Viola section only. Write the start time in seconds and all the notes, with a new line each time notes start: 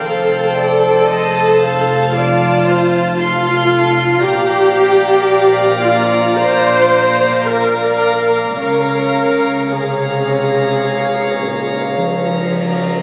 0.05 A4
2.15 F4
3.19 F4
4.22 G4
5.82 F4
6.37 C5
7.47 A#4
8.58 A#4
9.71 G#4